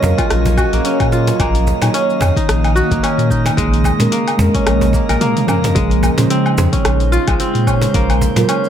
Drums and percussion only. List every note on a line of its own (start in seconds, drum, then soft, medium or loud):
0.03 cajon bass medium
0.03 cajon slap medium
0.03 shaker medium
0.18 kick loud
0.18 open hi-hat soft
0.18 low woodblock medium
0.18 shaker soft
0.30 cross-stick medium
0.30 open hi-hat medium
0.30 shaker soft
0.46 cajon bass medium
0.46 open hi-hat soft
0.46 shaker soft
0.58 kick medium
0.58 low woodblock medium
0.58 shaker medium
0.73 open hi-hat soft
0.73 shaker soft
0.85 open hi-hat medium
0.85 shaker soft
1.00 kick medium
1.00 open hi-hat soft
1.00 low woodblock medium
1.00 shaker soft
1.12 cajon slap medium
1.12 shaker medium
1.27 cajon slap medium
1.27 open hi-hat soft
1.27 shaker soft
1.40 kick loud
1.40 open hi-hat medium
1.40 low woodblock medium
1.40 shaker soft
1.55 open hi-hat soft
1.55 shaker soft
1.67 cajon bass medium
1.67 shaker medium
1.82 cajon slap medium
1.82 open hi-hat soft
1.82 low woodblock medium
1.82 shaker soft
1.94 open hi-hat medium
1.94 shaker soft
2.10 shaker soft
2.21 cajon bass medium
2.21 cajon slap medium
2.21 low woodblock medium
2.21 shaker medium
2.37 kick loud
2.37 open hi-hat soft
2.37 shaker soft
2.49 cross-stick medium
2.49 open hi-hat medium
2.49 shaker soft
2.64 open hi-hat soft
2.64 low woodblock medium
2.64 shaker soft
2.77 shaker medium
2.91 kick loud
2.91 open hi-hat soft
2.91 shaker soft
3.04 open hi-hat medium
3.04 low woodblock medium
3.04 shaker soft
3.19 open hi-hat soft
3.19 shaker soft
3.30 kick medium
3.30 shaker medium
3.46 cajon slap medium
3.46 open hi-hat soft
3.46 low woodblock medium
3.46 shaker soft
3.57 kick loud
3.57 open hi-hat medium
3.57 shaker soft
3.74 open hi-hat soft
3.74 shaker soft
3.84 cajon bass medium
3.84 low woodblock medium
3.84 shaker medium
4.00 cajon slap medium
4.00 open hi-hat soft
4.00 shaker soft
4.12 open hi-hat medium
4.12 shaker soft
4.28 open hi-hat soft
4.28 low woodblock medium
4.28 shaker soft
4.39 cajon bass medium
4.39 cajon slap medium
4.39 shaker medium
4.55 kick loud
4.55 open hi-hat soft
4.55 shaker soft
4.67 cross-stick medium
4.67 open hi-hat medium
4.67 high tom medium
4.67 low woodblock medium
4.67 shaker soft
4.81 cajon bass medium
4.81 open hi-hat soft
4.81 high tom soft
4.81 shaker soft
4.93 kick medium
4.93 cajon slap medium
4.93 shaker medium
5.09 open hi-hat soft
5.09 mid tom medium
5.09 low woodblock medium
5.09 shaker soft
5.21 open hi-hat medium
5.21 mid tom medium
5.21 shaker soft
5.37 open hi-hat soft
5.37 mid tom medium
5.37 shaker soft
5.48 cajon slap medium
5.48 mid tom medium
5.48 low woodblock medium
5.48 shaker medium
5.64 cajon slap medium
5.64 mid tom medium
5.64 open hi-hat soft
5.64 shaker soft
5.76 kick loud
5.76 open hi-hat medium
5.76 shaker soft
5.91 open hi-hat soft
5.91 shaker soft
6.03 cajon bass medium
6.03 low woodblock medium
6.03 shaker medium
6.18 cajon slap medium
6.18 open hi-hat soft
6.18 shaker soft
6.30 open hi-hat medium
6.30 shaker soft
6.46 low woodblock medium
6.46 shaker soft
6.58 cajon bass loud
6.58 cajon slap medium
6.58 shaker medium
6.73 kick loud
6.73 open hi-hat soft
6.73 shaker soft
6.85 cross-stick medium
6.85 open hi-hat medium
6.85 low woodblock medium
6.85 shaker soft
7.00 open hi-hat soft
7.00 shaker soft
7.13 shaker medium
7.28 kick loud
7.28 open hi-hat soft
7.28 low woodblock medium
7.28 shaker soft
7.40 open hi-hat medium
7.40 shaker soft
7.55 open hi-hat soft
7.55 shaker soft
7.67 kick medium
7.67 low woodblock medium
7.67 shaker medium
7.82 cajon slap medium
7.82 open hi-hat soft
7.82 shaker soft
7.94 kick loud
7.94 open hi-hat medium
7.94 shaker soft
8.10 open hi-hat soft
8.10 low woodblock medium
8.10 shaker soft
8.21 cajon bass medium
8.21 shaker medium
8.36 cajon slap medium
8.36 open hi-hat soft
8.36 shaker soft
8.49 open hi-hat medium
8.49 low woodblock medium
8.49 shaker soft
8.64 shaker soft